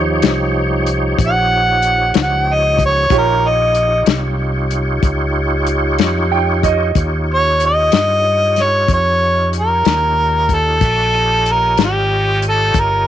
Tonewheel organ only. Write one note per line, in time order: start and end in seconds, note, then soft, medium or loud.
0.00 3.06 F3 medium
0.00 3.06 D#4 medium
0.00 3.06 G4 medium
0.00 3.06 C#5 medium
3.10 6.92 D#4 medium
3.10 6.92 F4 medium
3.10 6.92 G4 medium
3.10 6.91 C#5 medium
6.96 10.79 D#4 medium
6.96 10.79 F4 medium
6.96 10.79 G4 medium
6.96 10.78 C#5 medium
10.83 11.15 F#4 soft
10.83 11.15 D5 medium
10.83 11.15 E5 medium
10.83 11.15 G#5 medium
11.14 13.07 F4 medium
11.14 13.07 G4 medium
11.14 13.07 C#5 medium
11.14 13.07 D#5 medium